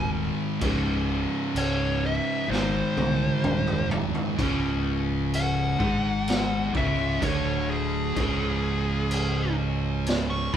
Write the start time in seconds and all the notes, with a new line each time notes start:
Already playing: D#1 G#2 D#3 G#3 G#5
0.61 C#1 C#2 G#2 C#3, kick, crash
1.54 C#1 C#5, crash
2.06 E5
2.48 G#1 G#2 D#3 G#3 C5
2.52 snare
2.96 C2, high tom
3.43 D#1, mid tom
3.67 mid tom
3.91 floor tom
4.15 floor tom
4.38 C#1 C#2 C#3, kick, crash
5.34 F#5, crash
5.80 G#1 G#2 G#3, kick
6.28 snare, crash
6.75 C#1 C#2 C#3 E5, kick
7.21 D1 D2 D3 C#5, kick, crash
7.70 G#4
8.16 C#1 C#2 C#3, kick, crash
9.11 crash
10.07 snare, crash
10.30 C#6
10.53 G1 G2, kick